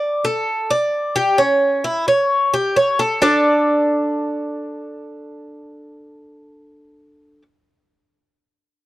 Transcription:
Already playing: D5
0.24 A4
0.70 D5
1.16 G4
1.38 C#4
1.84 E4
2.08 C#5
2.54 G4
2.76 C#5
2.99 A4
3.22 D4 A4 D5

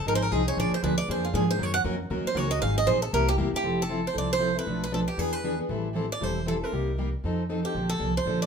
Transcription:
0.06 G#1 F3 C4 D#4 G#4 A#4
0.15 C5
0.22 A#4
0.31 C2 F3 C4 D#4 G#4
0.47 C4 D#4 G#4 C#5
0.57 A#1 D3 F3 A#3 D4 G#4 D5
0.71 C5, muted upright bass stroke
0.83 D2 D3 F3 A#3 D4 G#4 B4
0.98 D5
1.09 F2 D3 F3 A#3 D4 G#4 C5
1.25 F4
1.33 G#2 D3 F3 A#3 D4 G#4
1.48 A#3 D4 G#4 C5
1.58 F#2 D#3 F#3 A#3 C#4 D#4 F#4 A#4
1.63 C#5
1.74 F#5
1.84 F2 D#3 F#3 A#3 C#4 D#4 F#4 A#4
2.10 D#2 D#3 F#3 A#3 C#4 D#4 F#4 A#4
2.25 C5, muted upright bass stroke
2.35 C#2 D#3 F#3 A#3 C#4 D#4 F#4 A#4 C#5
2.48 C#4 F#4 A#4 D#5
2.60 G#1 D#3 F#3 C4 D#4 G#4 F5
2.78 D#5
2.86 A#1 D#3 F#3 C4 D#4 G#4 C5
3.02 A4
3.12 C2 C3 G3 A#3 E4 G4 A#4
3.29 G4
3.37 E2 C3 G3 A#3 E4 G4
3.53 A#3 E4 G4, muted upright bass stroke
3.63 F1 F3 C4 E4 A4
3.82 A4
3.89 F3 C4 E4 A4
4.07 C5
4.13 C2 F3 C4 E4 A4
4.18 D5
4.33 C5
4.39 F3 C4 E4 A4
4.55 C4 E4 A4 B4
4.67 B1 B2 F3 A3 D4 A4 B4
4.84 B4
4.92 B2 F3 A3 D4 A4 B4
5.08 G4
5.17 E2 E3 B3 D4 G#4 B4
5.33 B4
5.44 E3 B3 D4 G#4 B4
5.58 B3 D4 G#4
5.69 A1 E3 G3 C4 E4 A4
5.95 E3 G3 C4 E4 A4
6.12 D5
6.21 E1 E3 G3 C4 E4 A4 C5
6.46 E3 G3 C4 E4 A4
6.61 C4 E4 A4 A#4
6.72 C2 C3 G3 A#3 D#4 G4
6.98 C3 G3 A#3 D#4 G4
7.24 F2 F3 C4 D#4 A4
7.49 F3 C4 D#4 A4
7.63 C4 D#4 G4 A4
7.74 A#1 D3 F3 A#3 D4 A4
7.89 A4
7.99 C2 D3 F3 A#3 D4 A4
8.17 C5
8.26 A#1 D3 F3 A#3 D4 A4
8.42 D5

